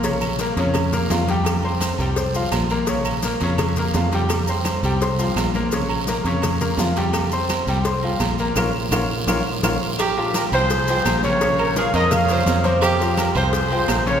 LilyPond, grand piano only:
\new Staff \with { instrumentName = "Grand piano" } { \time 4/4 \key f \minor \tempo 4 = 169 <des des' des''>4 <bes bes' bes''>8 <des des' des''>4 <bes bes' bes''>8 <f f' f''>8 <g g' g''>8~ | <g g' g''>8 <c' c'' c'''>4 <g g' g''>8 <c' c'' c'''>8 <f f' f''>4 <bes bes' bes''>8 | <des des' des''>4 <bes bes' bes''>8 <des des' des''>4 <bes bes' bes''>8 <f f' f''>8 <g g' g''>8~ | <g g' g''>8 <c' c'' c'''>4 <g g' g''>8 <c' c'' c'''>8 <f f' f''>4 <bes bes' bes''>8 |
<des des' des''>4 <bes bes' bes''>8 <des des' des''>4 <bes bes' bes''>8 <f f' f''>8 <g g' g''>8~ | <g g' g''>8 <c' c'' c'''>4 <g g' g''>8 <c' c'' c'''>8 <f f' f''>4 <bes bes' bes''>8 | <des' f' bes'>8 r8 <des' f' bes'>8 r8 <des' f' bes'>8 r8 <des' f' bes'>8 r8 | r8 <f f' g'>4 <f f' g''>4 <f f' g''>4 <des des' des''>8 |
<des des' des''>4 <f f' bes'>8 <f f' bes'>4 <f f' bes'>4 <c c' c''>8~ | <c c' c''>8 <f f' g'>4 <f f' g''>4 <f f' g''>4 <des des' des''>8 | }